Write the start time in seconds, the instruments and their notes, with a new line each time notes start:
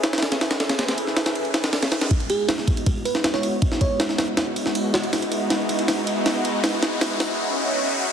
Already playing: analog synth pad C#4 E4 G#4 A4 B4, riser
0.03 snare, ride
0.13 snare, ride
0.18 snare, ride
0.23 snare, ride
0.32 snare, ride
0.41 snare, ride
0.51 snare, ride
0.60 snare, ride
0.69 snare, ride
0.79 snare, ride
0.88 snare, ride
0.98 ride
1.07 snare
1.17 snare, ride
1.26 snare, ride
1.35 ride
1.45 ride
1.54 snare, ride
1.64 snare, ride
1.73 snare, ride
1.83 snare, ride
1.92 snare, ride
2.01 snare, ride
2.10 808-style bass C#2, analog synth pad G#3 B3 D#4 E4 F#4, kick, ride, riser
2.20 ride
2.30 fm electric piano G#4, ride
2.49 snare, ride
2.58 snare
2.68 808-style bass C#2, kick, ride
2.77 ride
2.86 kick, ride
3.05 fm electric piano B4, ride
3.14 analog synth pad G#3 B3 D#4 E4 F#4, snare
3.24 808-style bass C#2, snare, ride
3.34 fm electric piano C#5, snare
3.42 analog synth pad G#3 B3 D#4 E4 F#4, ride
3.62 808-style bass C#2, analog synth pad G#3 B3 D#4 E4 F#4, kick, ride
3.72 snare
3.81 fm electric piano C#5, kick, ride
4.00 snare, ride
4.09 snare
4.18 808-style bass C#2, snare, ride
4.37 808-style bass G#1, snare, ride
4.56 808-style bass B1, ride
4.65 analog synth pad G#3 B3 D#4 E4 F#4, snare
4.75 ride
4.93 analog synth pad G#3 B3 D#4 E4 F#4, snare, ride
5.04 ride
5.13 808-style bass C#2, analog synth pad G#3 B3 D#4 E4 F#4, snare, ride
5.22 ride
5.32 ride
5.50 snare, ride
5.69 808-style bass C#2, ride
5.79 ride
5.88 snare, ride
6.07 ride
6.16 analog synth pad G#3 B3 D#4 E4 F#4
6.26 808-style bass C#2, snare, ride
6.45 analog synth pad G#3 B3 D#4 E4 F#4, ride
6.63 analog synth pad G#3 B3 D#4 E4 F#4, snare, ride
6.83 snare, ride
7.01 snare, ride
7.20 snare, open hi-hat
7.39 swell
7.68 analog synth pad G#3 B3 D#4 E4 F#4
7.96 analog synth pad G#3 B3 D#4 E4 F#4